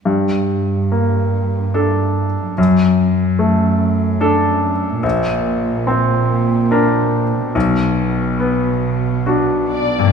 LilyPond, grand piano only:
\new Staff \with { instrumentName = "Grand piano" } { \time 3/4 \key g \lydian \tempo 4 = 72 g,4 bes4 <d' a'>4 | fis,4 a4 <d' a'>4 | bes,,4 c'4 <d' bes'>4 | b,,4 b4 <d' fis'>4 | }